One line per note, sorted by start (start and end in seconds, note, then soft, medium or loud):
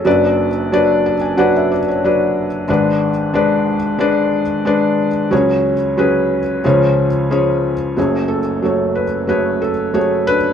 0.05 2.64 F#1 medium
0.05 2.64 F#2 medium
0.05 0.47 F#3 medium
0.05 0.47 D4 medium
0.05 0.47 B4 medium
0.05 0.48 D5 medium
0.72 1.13 F#3 medium
0.72 1.14 D4 medium
0.72 1.14 B4 medium
0.72 1.14 D5 medium
1.06 1.20 A5 medium
1.21 1.36 G#5 soft
1.37 1.79 F#3 medium
1.37 1.79 D4 medium
1.37 1.79 B4 medium
1.37 1.70 D5 medium
1.37 1.53 F#5 medium
1.56 1.70 E5 medium
1.72 1.86 D5 medium
1.88 2.03 C#5 medium
2.04 2.45 F#3 medium
2.04 2.45 D4 medium
2.04 2.46 B4 medium
2.04 2.07 D5 medium
2.68 5.28 G#1 medium
2.68 5.28 G#2 medium
2.68 3.10 G#3 medium
2.68 3.10 D4 medium
2.68 3.11 B4 medium
2.68 3.11 D5 medium
3.34 3.75 G#3 medium
3.34 3.75 D4 medium
3.34 3.76 B4 medium
3.34 3.76 D5 medium
3.99 4.41 G#3 medium
3.99 4.41 D4 medium
3.99 4.41 B4 medium
3.99 4.42 D5 medium
4.65 5.07 G#3 medium
4.65 5.07 D4 medium
4.65 5.08 B4 medium
4.65 5.08 D5 medium
5.31 6.60 C#2 medium
5.31 6.60 C#3 medium
5.31 5.73 F#3 medium
5.31 5.73 C#4 medium
5.31 5.73 G#4 medium
5.31 5.74 C#5 medium
5.97 6.39 F#3 medium
5.97 6.39 C#4 medium
5.97 6.40 G#4 medium
5.97 6.40 B4 medium
6.64 7.93 C#2 medium
6.64 7.93 C#3 medium
6.64 7.06 F3 medium
6.64 7.06 C#4 medium
6.64 7.06 G#4 medium
6.64 7.07 C#5 medium
7.31 7.72 F3 medium
7.31 7.72 C#4 medium
7.31 7.73 G#4 medium
7.31 7.73 C#5 medium
7.96 10.53 F#1 soft
7.96 10.53 F#2 soft
7.96 8.38 F#3 medium
7.96 8.38 A3 medium
7.96 9.26 C#4 soft
7.96 8.39 G#4 medium
7.96 8.39 C#5 medium
8.28 8.63 A4 medium
8.62 9.04 F#3 medium
8.62 9.05 A3 medium
8.62 9.05 A4 medium
8.62 9.06 C#5 medium
8.95 9.26 B4 medium
9.27 9.69 F#3 medium
9.27 9.70 A3 medium
9.27 9.70 G#4 medium
9.27 9.59 B4 medium
9.27 9.71 C#5 medium
9.62 9.95 A4 medium
9.94 10.35 F#3 medium
9.94 10.36 A3 medium
9.94 10.36 G#4 medium
9.94 10.28 C#5 medium
10.27 10.53 D4 medium
10.27 10.53 B4 loud